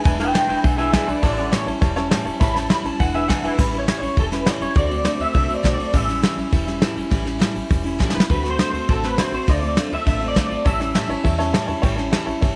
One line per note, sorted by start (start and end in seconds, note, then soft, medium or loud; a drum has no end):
0.04 0.36 E1 medium
0.04 0.19 E2 loud
0.04 0.19 B2 medium
0.04 0.19 E3 medium
0.04 0.18 G#3 medium
0.04 0.18 D4 loud
0.04 0.18 E4 medium
0.04 0.14 B4 loud
0.04 0.14 E5 loud
0.04 0.14 G#5 loud
0.04 kick loud
0.04 snare soft
0.04 ride loud
0.19 0.33 E3 soft
0.19 0.33 G#3 soft
0.19 0.33 D4 medium
0.19 0.33 E4 medium
0.19 0.33 B4 loud
0.19 0.29 B4 medium
0.19 0.29 E5 medium
0.19 0.33 G5 loud
0.19 snare soft
0.19 ride medium
0.33 0.49 E2 medium
0.33 0.49 B2 medium
0.33 0.49 E3 medium
0.33 0.48 G#3 medium
0.33 0.48 D4 medium
0.33 0.47 E4 medium
0.33 0.43 B4 medium
0.33 0.47 B4 medium
0.33 0.43 E5 medium
0.33 0.48 G5 loud
0.33 0.43 G#5 medium
0.33 snare loud
0.33 ride medium
0.48 0.55 E1 medium
0.48 0.62 E3 soft
0.48 0.63 G#3 soft
0.48 0.64 D4 medium
0.48 0.64 E4 medium
0.48 0.58 B4 medium
0.48 0.63 B4 medium
0.48 0.58 E5 medium
0.48 0.64 G5 medium
0.48 0.58 G#5 medium
0.48 ride medium
0.63 0.95 B1 medium
0.63 0.78 E3 medium
0.63 0.78 G#3 medium
0.63 0.78 D4 medium
0.63 0.77 E4 medium
0.63 0.76 G#4 medium
0.63 0.72 B4 medium
0.63 0.73 E5 medium
0.63 0.77 E5 loud
0.63 0.73 F#5 medium
0.63 kick loud
0.63 ride medium
0.77 0.93 E3 soft
0.77 0.93 G#3 soft
0.77 0.93 D4 medium
0.77 0.93 E4 medium
0.77 0.91 G#4 medium
0.77 0.87 B4 medium
0.77 0.91 E5 medium
0.77 0.87 E5 medium
0.77 0.87 G#5 loud
0.77 ride medium
0.92 1.08 E2 medium
0.92 1.08 B2 medium
0.92 1.08 E3 medium
0.92 1.07 G#3 medium
0.92 1.07 D4 medium
0.92 1.06 E4 loud
0.92 1.07 G#4 medium
0.92 1.02 B4 loud
0.92 1.08 E5 medium
0.92 1.02 E5 medium
0.92 1.02 G#5 loud
0.92 kick medium
0.92 snare loud
0.92 ride medium
1.07 1.14 B1 medium
1.07 1.22 E3 soft
1.07 1.23 G#3 medium
1.07 1.23 D4 medium
1.07 1.23 E4 medium
1.07 1.22 B4 medium
1.07 1.17 B4 medium
1.07 1.22 D5 medium
1.07 1.17 E5 medium
1.07 1.17 G#5 medium
1.07 ride medium
1.22 1.54 A1 medium
1.22 1.37 A2 medium
1.22 1.38 E3 loud
1.22 1.37 G3 medium
1.22 1.37 C#4 medium
1.22 1.36 E4 medium
1.22 1.36 A4 medium
1.22 1.31 C#5 loud
1.22 1.36 D5 loud
1.22 1.32 E5 loud
1.22 1.32 A5 loud
1.22 kick loud
1.22 snare soft
1.22 ride loud
1.37 1.51 G3 soft
1.37 1.52 C#4 medium
1.37 1.52 E4 medium
1.37 1.51 A4 medium
1.37 1.46 C#5 medium
1.37 1.52 D5 medium
1.37 1.46 E5 medium
1.37 1.46 F#5 medium
1.37 ride medium
1.52 1.67 A2 medium
1.52 1.67 E3 medium
1.52 1.67 G3 medium
1.52 1.66 C#4 medium
1.52 1.65 E4 medium
1.52 1.61 C#5 medium
1.52 1.67 C#5 loud
1.52 1.61 E5 medium
1.52 1.61 A5 medium
1.52 snare loud
1.52 ride medium
1.66 1.73 A1 medium
1.66 1.80 G3 soft
1.66 1.81 C#4 medium
1.66 1.81 E4 medium
1.66 1.76 C#5 medium
1.66 1.76 E5 medium
1.66 1.76 A5 medium
1.66 ride medium
1.81 2.13 E1 loud
1.81 1.96 E3 medium
1.81 1.96 G3 medium
1.81 1.95 C#4 medium
1.81 1.95 E4 medium
1.81 1.90 C#5 loud
1.81 1.91 E5 medium
1.81 1.91 A5 loud
1.81 kick loud
1.81 snare soft
1.81 ride medium
1.96 2.11 G3 medium
1.96 2.11 C#4 medium
1.96 2.11 E4 medium
1.96 2.05 C#5 loud
1.96 2.05 E5 loud
1.96 2.05 A5 loud
1.96 snare soft
1.96 ride medium
2.11 2.26 A2 medium
2.11 2.26 E3 loud
2.11 2.26 G3 loud
2.11 2.25 C#4 loud
2.11 2.24 E4 loud
2.11 2.20 C#5 loud
2.11 2.20 E5 loud
2.11 2.20 A5 loud
2.11 snare loud
2.11 ride medium
2.25 2.31 E1 medium
2.25 2.40 G3 medium
2.25 2.40 C#4 medium
2.25 2.40 E4 medium
2.25 2.34 C#5 medium
2.25 2.34 E5 medium
2.25 2.34 A5 loud
2.25 ride medium
2.40 2.72 A1 medium
2.40 2.55 A2 medium
2.40 2.55 E3 medium
2.40 2.56 G3 medium
2.40 2.55 C#4 medium
2.40 2.54 E4 medium
2.40 2.49 C#5 loud
2.40 2.49 E5 loud
2.40 2.49 A5 loud
2.40 2.56 B5 medium
2.40 kick loud
2.40 snare soft
2.40 ride medium
2.54 2.69 G3 soft
2.54 2.69 C#4 medium
2.54 2.69 E4 medium
2.54 2.64 C#5 medium
2.54 2.64 E5 medium
2.54 2.64 A5 medium
2.54 2.70 A5 medium
2.54 snare soft
2.54 ride medium
2.69 2.84 A2 medium
2.69 2.84 E3 medium
2.69 2.85 G3 medium
2.69 2.84 C#4 medium
2.69 2.83 E4 loud
2.69 2.79 C#5 medium
2.69 2.79 E5 medium
2.69 2.85 B5 medium
2.69 2.79 B5 medium
2.69 snare loud
2.69 ride medium
2.84 2.90 A1 medium
2.84 2.99 G3 soft
2.84 3.00 C#4 medium
2.84 2.99 E4 medium
2.84 2.93 C#5 medium
2.84 2.93 E5 medium
2.84 2.94 A5 medium
2.84 2.99 A5 loud
2.84 ride medium
2.99 3.31 E1 loud
2.99 3.14 E3 medium
2.99 3.14 G#3 medium
2.99 3.13 D4 medium
2.99 3.13 E4 medium
2.99 3.08 B4 medium
2.99 3.08 E5 medium
2.99 3.14 F#5 loud
2.99 3.08 G#5 medium
2.99 kick loud
2.99 ride medium
3.14 3.28 E3 soft
3.14 3.28 G#3 medium
3.14 3.28 D4 medium
3.14 3.28 E4 medium
3.14 3.23 B4 loud
3.14 3.23 E5 medium
3.14 3.28 E5 loud
3.14 3.23 G#5 loud
3.14 ride medium
3.28 3.43 E2 medium
3.28 3.43 B2 medium
3.28 3.43 E3 medium
3.28 3.43 G#3 medium
3.28 3.43 D4 loud
3.28 3.42 E4 medium
3.28 3.38 B4 medium
3.28 3.38 E5 medium
3.28 3.44 F#5 loud
3.28 3.38 G#5 loud
3.28 kick medium
3.28 snare loud
3.28 ride medium
3.43 3.49 E1 medium
3.43 3.57 E3 soft
3.43 3.58 G#3 soft
3.43 3.58 D4 soft
3.43 3.58 E4 medium
3.43 3.52 B4 medium
3.43 3.58 B4 medium
3.43 3.58 E5 loud
3.43 3.52 E5 medium
3.43 3.53 G#5 loud
3.43 ride medium
3.58 3.90 A1 medium
3.58 3.73 A2 medium
3.58 3.73 E3 medium
3.58 3.73 G3 medium
3.58 3.73 C#4 medium
3.58 3.72 E4 medium
3.58 3.78 B4 medium
3.58 kick loud
3.58 snare soft
3.58 crash loud
3.73 3.87 G3 soft
3.73 3.87 C#4 medium
3.73 3.87 E4 medium
3.73 ride medium
3.78 3.96 C#5 medium
3.87 4.02 A2 medium
3.87 4.02 E3 medium
3.87 4.02 G3 medium
3.87 4.01 C#4 medium
3.87 4.00 E4 medium
3.87 snare loud
3.87 ride medium
3.99 4.07 A1 medium
3.99 4.16 C#4 soft
3.99 4.16 E4 soft
3.99 4.16 C#5 medium
3.99 ride medium
4.03 4.15 G3 soft
4.16 4.48 E1 medium
4.16 4.31 E3 medium
4.16 4.32 G3 medium
4.16 4.31 C#4 medium
4.16 4.30 E4 medium
4.16 4.24 A4 medium
4.16 kick loud
4.16 ride medium
4.31 4.45 G3 soft
4.31 4.45 C#4 medium
4.31 4.45 E4 medium
4.31 4.48 B4 medium
4.31 snare soft
4.31 ride medium
4.46 4.61 A2 medium
4.46 4.61 E3 medium
4.46 4.61 G3 medium
4.46 4.60 C#4 medium
4.46 4.59 E4 medium
4.46 4.61 C#5 loud
4.46 snare loud
4.46 ride medium
4.60 4.67 E1 medium
4.60 4.75 G3 soft
4.60 4.75 C#4 medium
4.60 4.75 E4 medium
4.60 4.76 C#5 medium
4.60 ride medium
4.75 5.07 D2 medium
4.75 4.90 D3 medium
4.75 4.90 A3 medium
4.75 4.89 C4 medium
4.75 4.88 F#4 medium
4.75 5.21 D5 loud
4.75 kick loud
4.75 ride medium
4.89 5.03 A3 soft
4.89 5.03 C4 medium
4.89 5.04 F#4 medium
4.89 ride medium
5.04 5.19 D3 medium
5.04 5.19 A3 medium
5.04 5.18 C4 medium
5.04 5.17 F#4 medium
5.04 snare loud
5.04 ride medium
5.18 5.26 D2 medium
5.18 5.33 A3 soft
5.18 5.33 C4 soft
5.18 5.34 F#4 medium
5.18 5.34 E5 loud
5.18 ride medium
5.33 5.47 C2 medium
5.33 5.48 D3 medium
5.33 5.48 A3 medium
5.33 5.48 C4 medium
5.33 5.47 F#4 medium
5.33 5.54 E5 loud
5.33 kick loud
5.33 ride medium
5.48 5.55 C2 medium
5.48 5.62 A3 soft
5.48 5.62 C4 medium
5.48 5.63 F#4 medium
5.48 ride medium
5.54 5.73 D5 medium
5.63 5.77 B1 medium
5.63 5.78 D3 medium
5.63 5.78 A3 medium
5.63 5.77 C4 loud
5.63 5.76 F#4 medium
5.63 kick medium
5.63 snare loud
5.63 ride medium
5.74 5.93 F#4 medium
5.74 5.94 D5 medium
5.78 5.84 B1 medium
5.78 5.93 A3 soft
5.78 5.93 C4 medium
5.78 ride medium
5.93 6.24 A1 medium
5.93 6.08 A2 medium
5.93 6.08 E3 medium
5.93 6.08 G3 medium
5.93 6.07 C#4 medium
5.93 6.07 E4 medium
5.93 6.82 E5 medium
5.93 kick loud
5.93 snare soft
5.93 ride loud
6.08 6.22 G3 soft
6.08 6.22 C#4 medium
6.08 6.22 E4 medium
6.08 snare soft
6.08 ride medium
6.22 6.37 A2 medium
6.22 6.38 E3 medium
6.22 6.37 G3 medium
6.22 6.37 C#4 medium
6.22 6.35 E4 medium
6.22 snare loud
6.22 ride medium
6.37 6.43 A1 medium
6.37 6.50 G3 soft
6.37 6.51 C#4 soft
6.37 6.52 E4 medium
6.37 ride medium
6.51 6.84 E1 medium
6.51 6.66 E3 medium
6.51 6.67 G3 medium
6.51 6.66 C#4 medium
6.51 6.65 E4 medium
6.51 kick loud
6.51 snare soft
6.51 ride medium
6.66 6.81 G3 medium
6.66 6.81 C#4 medium
6.66 6.81 E4 medium
6.66 snare soft
6.66 ride medium
6.82 6.97 A2 medium
6.82 6.97 E3 loud
6.82 6.97 G3 medium
6.82 6.96 C#4 medium
6.82 6.94 E4 loud
6.82 snare loud
6.82 ride medium
6.95 7.03 E1 medium
6.95 7.10 G3 medium
6.95 7.10 C#4 medium
6.95 7.10 E4 medium
6.95 ride medium
7.10 7.42 A1 medium
7.10 7.26 A2 medium
7.10 7.26 E3 medium
7.10 7.25 G3 medium
7.10 7.25 C#4 medium
7.10 7.24 E4 loud
7.10 kick loud
7.10 snare soft
7.10 ride medium
7.25 7.39 G3 medium
7.25 7.39 C#4 medium
7.25 7.39 E4 medium
7.25 snare soft
7.25 ride medium
7.39 7.55 A2 medium
7.39 7.55 E3 medium
7.39 7.54 G3 loud
7.39 7.53 C#4 medium
7.39 7.53 E4 medium
7.39 snare loud
7.39 ride medium
7.54 7.62 A1 medium
7.54 7.68 G3 soft
7.54 7.69 C#4 soft
7.54 7.69 E4 medium
7.54 ride medium
7.69 8.01 E1 medium
7.69 7.85 E3 medium
7.69 7.85 G3 medium
7.69 7.84 C#4 medium
7.69 7.83 E4 medium
7.69 kick loud
7.69 ride medium
7.84 7.98 G3 medium
7.84 7.98 C#4 medium
7.84 7.99 E4 medium
7.84 ride medium
7.99 8.14 A2 medium
7.99 8.14 E3 loud
7.99 8.14 G3 loud
7.99 8.14 C#4 loud
7.99 8.13 E4 loud
7.99 kick medium
7.99 snare medium
8.10 8.29 E4 medium
8.10 snare medium
8.15 8.21 E1 medium
8.15 8.28 G3 medium
8.15 8.29 C#4 medium
8.15 8.20 B4 medium
8.20 snare loud
8.28 8.60 D2 medium
8.28 8.44 D3 medium
8.28 8.44 A3 medium
8.28 8.43 C4 medium
8.28 8.42 F#4 medium
8.28 8.50 B4 medium
8.28 kick loud
8.28 ride medium
8.43 8.57 A3 soft
8.43 8.58 C4 soft
8.43 8.58 F#4 medium
8.43 snare soft
8.43 ride medium
8.50 8.69 C5 medium
8.58 8.73 D3 medium
8.58 8.73 A3 medium
8.58 8.72 C4 medium
8.58 8.71 F#4 medium
8.58 snare loud
8.58 ride medium
8.71 8.79 D2 medium
8.71 8.87 A3 soft
8.71 8.88 C4 medium
8.71 8.88 F#4 medium
8.71 8.90 C5 medium
8.71 ride medium
8.88 9.20 A1 medium
8.88 9.03 D3 medium
8.88 9.03 A3 medium
8.88 9.03 C4 medium
8.88 9.02 F#4 medium
8.88 9.04 A4 loud
8.88 kick loud
8.88 ride medium
9.03 9.17 A3 soft
9.03 9.17 C4 medium
9.03 9.18 F#4 medium
9.03 9.20 B4 medium
9.03 snare soft
9.03 ride medium
9.18 9.33 D3 medium
9.18 9.33 A3 medium
9.18 9.32 C4 medium
9.18 9.31 F#4 medium
9.18 9.33 C5 loud
9.18 snare loud
9.18 ride medium
9.32 9.38 A1 medium
9.32 9.46 A3 soft
9.32 9.46 C4 medium
9.32 9.47 F#4 medium
9.32 9.49 C5 medium
9.32 ride medium
9.47 9.79 D2 medium
9.47 9.62 D3 medium
9.47 9.62 A3 medium
9.47 9.61 C4 medium
9.47 9.60 F4 medium
9.47 9.92 D5 loud
9.47 kick loud
9.47 snare soft
9.47 ride medium
9.61 9.75 A3 medium
9.61 9.76 C4 medium
9.61 9.76 F4 medium
9.61 ride medium
9.76 9.91 D3 medium
9.76 9.91 A3 medium
9.76 9.90 C4 medium
9.76 9.89 F4 medium
9.76 snare loud
9.76 ride medium
9.90 9.98 D2 medium
9.90 10.04 A3 soft
9.90 10.05 C4 medium
9.90 10.06 F4 medium
9.90 10.06 E5 loud
9.90 ride medium
10.05 10.37 A1 medium
10.05 10.20 D3 medium
10.05 10.21 A3 medium
10.05 10.20 C4 medium
10.05 10.19 F4 medium
10.05 10.27 E5 loud
10.05 kick loud
10.05 snare soft
10.05 ride medium
10.20 10.34 A3 medium
10.20 10.34 C4 soft
10.20 10.35 F4 medium
10.20 ride medium
10.28 10.46 D5 loud
10.35 10.50 D3 medium
10.35 10.50 A3 medium
10.35 10.50 C4 medium
10.35 10.48 F4 medium
10.35 kick medium
10.35 snare loud
10.35 ride medium
10.47 10.56 A1 medium
10.47 10.65 F4 medium
10.47 10.66 D5 medium
10.51 10.65 A3 soft
10.51 10.65 C4 medium
10.51 ride medium
10.65 10.96 A1 medium
10.65 10.80 A2 medium
10.65 10.80 E3 medium
10.65 10.80 G3 medium
10.65 10.80 C#4 medium
10.65 10.79 E4 medium
10.65 10.74 C#5 loud
10.65 10.74 E5 loud
10.65 11.50 E5 loud
10.65 10.74 A5 loud
10.65 kick loud
10.65 snare soft
10.65 ride loud
10.80 10.94 G3 soft
10.80 10.94 C#4 medium
10.80 10.95 E4 medium
10.80 10.89 C#5 medium
10.80 10.89 E5 medium
10.80 10.89 A5 medium
10.80 snare soft
10.80 ride medium
10.94 11.09 A2 medium
10.94 11.09 E3 medium
10.94 11.09 G3 medium
10.94 11.09 C#4 medium
10.94 11.07 E4 loud
10.94 11.04 C#5 medium
10.94 11.04 E5 medium
10.94 11.04 A5 medium
10.94 snare loud
10.94 ride medium
11.09 11.15 A1 medium
11.09 11.23 G3 soft
11.09 11.23 C#4 medium
11.09 11.24 E4 medium
11.09 11.18 C#5 medium
11.09 11.18 E5 medium
11.09 11.19 A5 medium
11.09 ride medium
11.24 11.55 E2 medium
11.24 11.39 E3 medium
11.24 11.39 G3 medium
11.24 11.38 C#4 medium
11.24 11.37 E4 medium
11.24 11.33 C#5 medium
11.24 11.33 E5 medium
11.24 11.33 A5 loud
11.24 kick loud
11.24 ride medium
11.38 11.53 G3 medium
11.38 11.54 C#4 medium
11.38 11.53 E4 medium
11.38 11.48 C#5 loud
11.38 11.47 E5 loud
11.38 11.48 A5 loud
11.38 snare soft
11.38 ride medium
11.53 11.69 A2 medium
11.53 11.69 E3 medium
11.53 11.69 G3 medium
11.53 11.68 C#4 medium
11.53 11.67 E4 loud
11.53 11.62 C#5 loud
11.53 11.62 E5 loud
11.53 11.62 A5 loud
11.53 snare loud
11.53 ride medium
11.67 11.74 E2 medium
11.67 11.83 G3 medium
11.67 11.83 C#4 medium
11.67 11.83 E4 medium
11.67 11.77 C#5 loud
11.67 11.77 E5 medium
11.67 11.77 A5 loud
11.67 ride medium
11.82 12.14 A1 medium
11.82 11.98 A2 medium
11.82 11.98 E3 loud
11.82 11.98 G3 loud
11.82 11.97 C#4 medium
11.82 11.96 E4 medium
11.82 11.91 C#5 loud
11.82 11.91 E5 loud
11.82 11.92 G5 loud
11.82 kick loud
11.82 ride medium
11.96 12.12 G3 soft
11.96 12.12 C#4 medium
11.96 12.12 E4 medium
11.96 12.06 C#5 medium
11.96 12.06 E5 medium
11.96 12.06 A5 medium
11.96 snare soft
11.96 ride medium
12.11 12.27 A2 medium
12.11 12.27 E3 medium
12.11 12.27 G3 loud
12.11 12.27 C#4 loud
12.11 12.25 E4 loud
12.11 12.21 C#5 medium
12.11 12.21 E5 medium
12.11 12.21 A5 medium
12.11 snare loud
12.11 ride medium
12.26 12.33 A1 medium
12.26 12.41 G3 soft
12.26 12.42 C#4 medium
12.26 12.42 E4 medium
12.26 12.35 C#5 medium
12.26 12.35 E5 medium
12.26 12.36 A5 medium
12.26 ride medium
12.41 12.55 G1 medium
12.41 12.56 E3 medium
12.41 12.56 G3 medium
12.41 12.56 C#4 medium
12.41 12.55 E4 medium
12.41 12.50 C#5 medium
12.41 12.51 E5 medium
12.41 12.51 A5 medium
12.41 kick loud
12.41 snare soft
12.41 ride medium